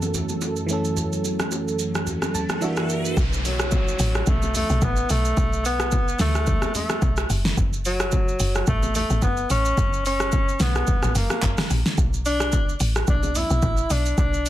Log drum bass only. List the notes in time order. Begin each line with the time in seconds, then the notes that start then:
3.17 B1
4.00 A1
4.27 B1
4.70 B1
4.82 A1
5.10 B1
5.37 B1
6.20 D2
7.02 B1
7.30 F#1
7.57 F#1
8.40 F#1
8.68 A1
9.10 A1
9.22 F#1
9.50 A1
9.78 F#1
10.60 B1
11.03 A1
11.15 F#1
11.43 F#1
11.71 A#1
11.98 B1
12.80 A1
13.08 B1
13.50 B1
13.62 A1
13.90 B1
14.18 B1